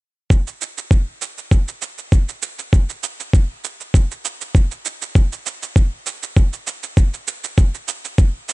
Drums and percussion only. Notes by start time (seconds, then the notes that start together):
0.30 kick, shaker
0.47 shaker
0.61 shaker
0.78 shaker
0.91 kick, shaker
1.22 shaker
1.38 shaker
1.51 kick, shaker
1.68 shaker
1.82 shaker
1.98 shaker
2.12 kick, shaker
2.29 shaker
2.42 shaker
2.59 shaker
2.73 kick, shaker
2.89 shaker
3.03 shaker
3.20 shaker
3.33 kick, shaker
3.64 shaker
3.81 shaker
3.94 kick, shaker
4.11 shaker
4.25 shaker
4.41 shaker
4.55 kick, shaker
4.71 shaker
4.85 shaker
5.02 shaker
5.15 kick, shaker
5.32 shaker
5.46 shaker
5.63 shaker
5.76 kick, shaker
6.06 shaker
6.23 shaker
6.37 kick, shaker
6.53 shaker
6.67 shaker
6.83 shaker
6.97 kick, shaker
7.14 shaker
7.28 shaker
7.44 shaker
7.58 kick, shaker
7.74 shaker
7.88 shaker
8.05 shaker
8.18 kick, shaker
8.49 shaker